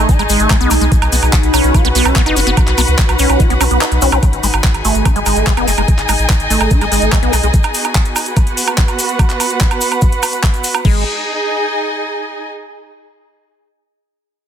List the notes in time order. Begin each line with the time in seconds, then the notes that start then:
Already playing: A3 D#4 G#4 D#5 G#5
0.09 D#4, kick, closed hi-hat, shaker
0.19 G#1 G#3, closed hi-hat, high woodblock, shaker
0.29 G#1 G#3, open hi-hat, shaker
0.39 G#1 A3, closed hi-hat, shaker
0.50 G#3, kick, clap, closed hi-hat, high woodblock, shaker
0.61 B1 B3, closed hi-hat, shaker
0.71 B1 A3, open hi-hat, high woodblock, shaker
0.81 B1 G#3, closed hi-hat, shaker
0.92 F#4, kick, closed hi-hat, shaker
1.02 B1 B4, closed hi-hat, high woodblock, shaker
1.11 B1 B3 F#5, open hi-hat, shaker
1.23 B1, high woodblock, shaker
1.33 kick, clap, closed hi-hat, shaker
1.42 B1 B5, closed hi-hat, shaker
1.54 B1 C#4, open hi-hat, high woodblock, shaker
1.64 B1, closed hi-hat, shaker
1.74 F#4, kick, closed hi-hat, high woodblock, shaker
1.85 B1 B3, closed hi-hat, shaker
1.95 B1 B3, open hi-hat, shaker
2.05 B1 C#4, closed hi-hat, high woodblock, shaker
2.15 B3, kick, clap, closed hi-hat, shaker
2.26 F#1 D#4, closed hi-hat, high woodblock, shaker
2.36 F#1 C#4, open hi-hat, shaker
2.47 F#1 B3, closed hi-hat, shaker
2.57 kick, closed hi-hat, high woodblock, shaker
2.67 B1, clap, closed hi-hat, shaker
2.78 B1 B3, open hi-hat, high woodblock, shaker
2.88 C#2, closed hi-hat, shaker
2.98 kick, clap, closed hi-hat, shaker
3.09 B1, closed hi-hat, high woodblock, shaker
3.19 B1 C#4, open hi-hat, shaker
3.29 B1, closed hi-hat, high woodblock, shaker
3.40 F#4, kick, closed hi-hat, shaker
3.50 B1 B3, closed hi-hat, shaker
3.61 B1 C#4, open hi-hat, high woodblock, shaker
3.71 B1 B3, closed hi-hat, shaker
3.81 D#4, clap, closed hi-hat, high woodblock, shaker
3.92 B1, closed hi-hat, shaker
4.02 B1 C#4, open hi-hat, shaker
4.12 B1 C#4, closed hi-hat, high woodblock, shaker
4.23 D#4, kick, closed hi-hat, high woodblock, shaker
4.33 G#1, closed hi-hat, shaker
4.43 G#1 G#3 G#5, open hi-hat, shaker
4.53 G#1, closed hi-hat, high woodblock, shaker
4.64 G#4, kick, clap, closed hi-hat, shaker
4.74 G#1, closed hi-hat, high woodblock, shaker
4.85 G#1 A3, open hi-hat, shaker
4.95 G#1, closed hi-hat, shaker
5.05 D#4, kick, closed hi-hat, high woodblock, shaker
5.16 G#1 G#3 D#5, closed hi-hat, shaker
5.26 G#1 G#3, open hi-hat, high woodblock, shaker
5.36 G#1 A3, closed hi-hat, shaker
5.46 G#3, kick, clap, closed hi-hat, shaker
5.57 F#1 B3, closed hi-hat, high woodblock, shaker
5.68 F#1 A3, open hi-hat, shaker
5.77 F#1 G#3, closed hi-hat, high woodblock, shaker
5.88 kick, closed hi-hat, shaker
5.98 G#1, clap, closed hi-hat, shaker
6.09 G#1 G#3, open hi-hat, high woodblock, shaker
6.19 A1, closed hi-hat, shaker
6.30 kick, clap, closed hi-hat, high woodblock, shaker
6.40 G#1, closed hi-hat, shaker
6.50 G#1 A3, open hi-hat, shaker
6.61 G#1, closed hi-hat, high woodblock, shaker
6.71 D#4, kick, closed hi-hat, shaker
6.81 G#1 G#3, closed hi-hat, high woodblock, shaker
6.92 G#1 G#3, open hi-hat, shaker
7.02 G#1 A3, closed hi-hat, shaker
7.12 G#3, kick, clap, closed hi-hat, high woodblock, shaker
7.23 B1 B3, closed hi-hat, shaker
7.33 B1 A3, open hi-hat, high woodblock, shaker
7.43 B1 G#3, closed hi-hat, shaker
7.54 B3, kick, closed hi-hat, shaker
7.59 F#4, shaker
7.64 closed hi-hat, high woodblock
7.74 open hi-hat, shaker
7.85 closed hi-hat, high woodblock, shaker
7.95 kick, clap, closed hi-hat, shaker
8.05 closed hi-hat, shaker
8.16 open hi-hat, high woodblock, shaker
8.26 B4, closed hi-hat, shaker
8.31 F#5
8.37 kick, closed hi-hat, high woodblock, shaker
8.47 closed hi-hat, shaker
8.57 open hi-hat, shaker
8.67 closed hi-hat, high woodblock, shaker
8.78 kick, clap, closed hi-hat, shaker
8.88 closed hi-hat, high woodblock, shaker
8.99 open hi-hat, shaker
9.09 closed hi-hat, shaker
9.19 kick, closed hi-hat, high woodblock, shaker
9.30 clap, closed hi-hat, shaker
9.40 open hi-hat, high woodblock, shaker
9.50 closed hi-hat, shaker
9.61 kick, clap, closed hi-hat, shaker
9.71 closed hi-hat, high woodblock, shaker
9.81 open hi-hat, shaker
9.92 closed hi-hat, high woodblock, shaker
10.01 kick, closed hi-hat, shaker
10.12 closed hi-hat, shaker
10.23 open hi-hat, high woodblock, shaker
10.33 closed hi-hat, shaker
10.43 kick, clap, closed hi-hat, high woodblock, shaker
10.54 closed hi-hat, shaker
10.64 open hi-hat, shaker
10.75 high woodblock, shaker
10.85 G#1 G#3 D#4, kick, crash
10.91 G#4
10.97 D#5
11.03 G#5